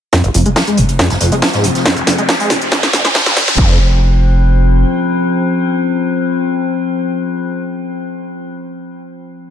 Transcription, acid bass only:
0.13 0.22 F2 loud
0.24 0.30 F1 medium
0.35 0.44 F2 medium
0.46 0.49 G#3 medium
0.56 0.62 F3 medium
0.67 0.79 G#3 medium
0.77 0.84 F2 medium
0.99 1.09 F2 loud
1.10 1.16 F1 loud
1.21 1.30 F2 medium
1.32 1.36 G#3 medium
1.42 1.49 F3 medium
1.54 1.65 G#2 medium
1.64 1.70 F2 medium
1.86 1.95 F2 loud
1.97 2.02 F1 loud
2.07 2.16 F2 medium
2.18 2.22 G#3 medium
2.29 2.35 F3 medium
2.40 2.52 G#3 medium
2.50 2.57 F2 medium
2.72 2.81 F2 loud
2.83 2.89 F1 loud
2.93 3.03 F2 medium
3.05 3.08 G#3 medium
3.15 3.21 F3 medium
3.26 3.38 G#2 medium
3.36 3.43 F2 medium
3.58 3.78 F2 medium

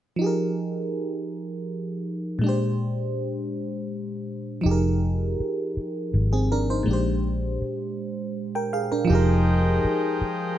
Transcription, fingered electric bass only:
4.66 5.35 F1 medium
5.40 muted fingered electric bass stroke soft
5.77 muted fingered electric bass stroke soft
6.14 6.83 G#1 medium
6.87 7.57 A#1 medium
7.62 muted fingered electric bass stroke soft
9.10 9.80 F1 loud
9.84 muted fingered electric bass stroke medium
10.21 muted fingered electric bass stroke soft

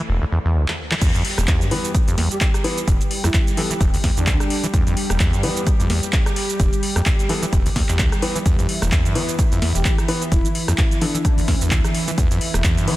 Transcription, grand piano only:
1.71 1.89 E3 medium
1.71 1.89 B3 medium
1.71 1.89 B4 medium
2.64 2.76 E3 loud
2.64 2.76 B3 medium
2.64 2.76 B4 loud
3.57 3.69 E3 medium
3.57 3.69 B3 medium
3.57 3.69 A4 medium
5.43 5.61 E3 medium
5.43 5.61 B3 medium
5.43 5.61 B4 medium
7.29 7.41 E3 medium
7.29 7.41 B3 medium
7.29 7.41 A4 medium
8.22 8.34 E3 loud
8.22 8.35 B3 medium
8.22 8.34 B4 loud
9.15 9.33 E3 medium
9.15 9.33 B3 medium
9.15 9.33 B4 medium
10.08 10.21 E3 loud
10.08 10.21 B3 medium
10.08 10.21 B4 loud
11.02 11.14 E3 medium
11.02 11.14 B3 medium
11.02 11.14 A4 medium
12.88 12.96 E3 medium
12.88 12.96 B3 medium
12.88 12.96 B4 medium

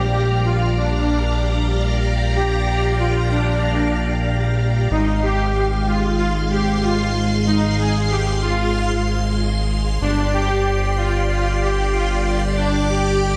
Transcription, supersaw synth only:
0.00 0.12 G4 loud
0.13 0.45 G4 loud
0.44 0.77 F4 loud
0.77 2.00 D4 medium
2.36 2.65 G4 loud
2.67 3.00 G4 loud
3.00 3.32 F4 loud
3.31 4.55 D4 loud
4.91 5.24 D#4 loud
5.23 5.89 G4 loud
5.87 6.17 F4 medium
6.19 6.33 F4 loud
6.51 6.84 G4 loud
6.83 7.27 F4 loud
7.46 7.79 D#4 loud
7.78 8.11 G#4 loud
8.10 8.24 G4 loud
8.42 9.66 F4 loud
10.02 10.31 D4 loud
10.34 10.99 G4 loud
10.97 11.28 F4 loud
11.29 11.62 F4 loud
11.61 11.94 G4 loud
11.93 12.38 F4 loud
12.57 12.90 D4 loud
12.89 13.37 G4 loud

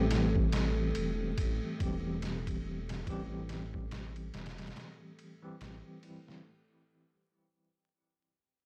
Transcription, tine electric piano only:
0.00 1.75 E3 medium
0.00 1.75 G3 medium
0.00 1.76 C4 medium
0.00 1.77 G4 medium
1.79 3.02 E3 medium
1.79 3.03 G3 medium
1.79 3.03 C4 medium
1.79 3.04 G4 medium
3.06 5.13 E3 medium
3.06 5.14 G3 medium
3.06 5.15 C4 medium
3.06 5.15 G4 loud
5.42 5.98 E3 medium
5.42 5.98 G3 medium
5.42 5.99 C4 medium
5.42 5.99 G4 medium
6.03 6.41 E3 medium
6.03 6.41 G3 medium
6.03 6.41 C4 medium
6.03 6.42 E4 medium

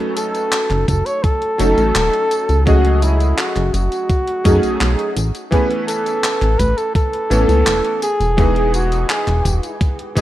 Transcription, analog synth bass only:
0.70 0.85 F#1 loud
0.88 1.03 F#1 medium
1.60 1.75 F#1 medium
1.77 1.92 A1 loud
1.96 2.10 D#1 medium
2.49 3.34 C#2 loud
3.56 3.71 F#1 loud
3.74 3.89 F#1 medium
4.45 4.60 F#2 medium
4.63 4.77 B1 soft
4.81 4.96 B1 medium
5.16 5.32 A1 medium
6.42 6.57 A1 loud
6.59 6.75 A1 medium
7.31 7.46 A1 medium
7.49 7.64 C#2 loud
7.66 7.82 E1 medium
8.20 9.05 E1 loud
9.27 9.42 E1 loud
9.45 9.60 E1 medium
10.17 10.21 E2 medium

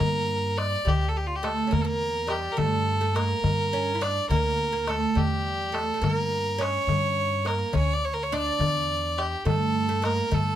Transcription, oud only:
0.00 0.84 A#3 medium
0.85 1.04 G3 medium
1.43 1.69 A3 medium
1.67 1.83 A#3 medium
1.67 1.71 C#4 medium
1.85 2.27 A#3 medium
2.27 2.56 G3 medium
2.57 3.00 A3 medium
3.01 3.15 A3 medium
3.16 3.74 A#3 medium
3.73 3.94 C#4 medium
3.95 4.01 E4 medium
4.01 4.31 D4 medium
4.31 4.70 A#3 medium
4.73 4.86 A#3 medium
4.87 5.15 A3 medium
5.15 5.72 G3 medium
5.72 5.93 A3 medium
5.94 6.01 A3 medium
6.02 6.61 A#3 medium
6.59 7.47 C#4 medium
7.45 7.74 A#3 medium
7.73 7.93 C#4 medium
8.32 9.42 D4 medium
9.45 9.88 A3 medium
9.89 10.02 A3 medium
10.02 10.29 A#3 medium
10.31 10.55 A3 medium

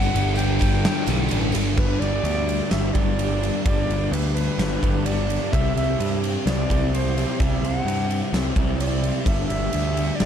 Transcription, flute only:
0.00 0.39 F#5 loud
0.37 1.54 G5 medium
1.76 2.01 B4 medium
1.99 2.72 D5 loud
2.70 2.95 E5 loud
2.93 3.64 D5 loud
3.64 4.14 D5 loud
4.12 4.33 B4 medium
4.34 5.07 B4 medium
5.06 5.53 D5 medium
5.52 5.76 E5 medium
5.76 6.16 E5 medium
6.46 6.96 D5 medium
6.95 7.41 C5 medium
7.40 7.66 E5 medium
7.65 8.34 F#5 loud
8.78 9.26 D5 medium
9.25 9.46 E5 medium
9.47 10.17 E5 medium
10.15 10.26 D5 medium

